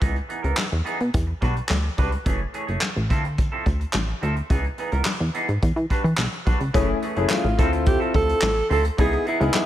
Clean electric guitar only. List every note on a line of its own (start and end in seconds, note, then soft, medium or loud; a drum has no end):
0.00 0.15 E3 medium
0.00 0.15 B3 medium
0.00 0.15 D#4 medium
0.00 0.16 G#4 medium
0.29 0.40 E3 medium
0.29 0.40 B3 medium
0.29 0.40 D#4 medium
0.29 0.41 G#4 medium
0.42 0.55 E3 soft
0.42 0.54 B3 medium
0.42 0.54 D#4 medium
0.42 0.54 A#4 medium
0.70 muted clean electric guitar stroke soft
0.84 0.99 E3 medium
0.84 0.99 B3 medium
0.84 0.98 D#4 medium
0.84 0.98 G#4 medium
0.99 muted clean electric guitar stroke soft
1.27 muted clean electric guitar stroke soft
1.41 1.55 G3 medium
1.41 1.55 D4 medium
1.41 1.55 F#4 medium
1.41 1.54 B4 medium
1.55 muted clean electric guitar stroke soft
1.69 muted clean electric guitar stroke soft
1.83 muted clean electric guitar stroke soft
1.97 2.11 G3 medium
1.97 2.12 D4 medium
1.97 2.11 F#4 medium
1.97 2.10 B4 medium
2.11 muted clean electric guitar stroke soft
2.25 2.39 E3 medium
2.25 2.40 A3 medium
2.25 2.40 C#4 medium
2.25 2.40 G#4 medium
2.54 2.64 E3 medium
2.54 2.65 A3 medium
2.54 2.65 C#4 medium
2.54 2.65 G#4 medium
2.67 2.79 E3 soft
2.67 2.79 A3 medium
2.67 2.79 C#4 medium
2.67 2.78 G#4 medium
2.81 muted clean electric guitar stroke soft
2.96 muted clean electric guitar stroke soft
3.09 3.23 F3 medium
3.09 3.24 C4 medium
3.09 3.23 E4 medium
3.09 3.23 A4 medium
3.24 muted clean electric guitar stroke medium
3.38 muted clean electric guitar stroke soft
3.52 3.64 F3 medium
3.52 3.65 C4 medium
3.52 3.65 E4 medium
3.52 3.65 A4 medium
3.65 muted clean electric guitar stroke soft
3.80 muted clean electric guitar stroke soft
4.08 muted clean electric guitar stroke soft
4.21 4.35 F3 medium
4.21 4.36 C4 medium
4.21 4.35 E4 medium
4.21 4.35 A4 medium
4.36 muted clean electric guitar stroke soft
4.50 4.64 E3 medium
4.50 4.64 B3 medium
4.50 4.64 D#4 medium
4.50 4.64 G#4 medium
4.78 4.89 E3 medium
4.78 4.89 B3 medium
4.78 4.89 D#4 medium
4.78 4.90 G#4 medium
4.92 5.04 E3 soft
4.92 5.04 B3 soft
4.92 5.03 D#4 medium
4.92 5.03 A#4 medium
5.06 muted clean electric guitar stroke soft
5.20 muted clean electric guitar stroke soft
5.34 5.48 E3 medium
5.34 5.48 B3 medium
5.34 5.48 D#4 medium
5.34 5.47 G#4 medium
5.48 muted clean electric guitar stroke medium
5.76 muted clean electric guitar stroke soft
5.90 6.04 G3 medium
5.90 6.04 D4 medium
5.90 6.04 F#4 medium
5.90 6.03 B4 medium
6.04 muted clean electric guitar stroke soft
6.18 muted clean electric guitar stroke soft
6.32 muted clean electric guitar stroke soft
6.45 6.60 G3 medium
6.45 6.59 D4 medium
6.45 6.59 F#4 medium
6.45 6.58 B4 medium
6.60 muted clean electric guitar stroke soft
6.73 6.88 E3 medium
6.73 6.88 A3 medium
6.73 6.88 C#4 medium
6.73 6.88 G#4 medium
7.02 7.13 E3 medium
7.02 7.13 A3 medium
7.02 7.13 C#4 medium
7.02 7.14 G#4 medium
7.15 7.27 E3 medium
7.15 7.27 A3 medium
7.15 7.27 C#4 medium
7.15 7.27 G#4 medium
7.30 muted clean electric guitar stroke soft
7.44 muted clean electric guitar stroke soft
7.58 7.72 F3 medium
7.58 7.72 C4 loud
7.58 7.71 E4 loud
7.58 7.71 A4 loud
7.72 muted clean electric guitar stroke medium
7.86 muted clean electric guitar stroke soft
8.00 8.13 F3 medium
8.00 8.13 C4 medium
8.00 8.14 E4 medium
8.00 8.14 A4 medium
8.14 muted clean electric guitar stroke soft
8.28 muted clean electric guitar stroke soft
8.56 muted clean electric guitar stroke medium
8.69 8.84 F3 loud
8.69 8.83 C4 loud
8.69 8.83 E4 loud
8.69 8.82 A4 loud
8.83 muted clean electric guitar stroke medium
8.97 9.12 E3 medium
8.97 9.12 B3 medium
8.97 9.12 D#4 medium
8.97 9.12 G#4 medium
9.26 9.37 E3 medium
9.26 9.37 B3 medium
9.26 9.37 D#4 medium
9.26 9.38 G#4 medium
9.39 9.52 E3 medium
9.39 9.51 B3 medium
9.39 9.51 D#4 medium
9.39 9.51 A#4 medium
9.54 muted clean electric guitar stroke soft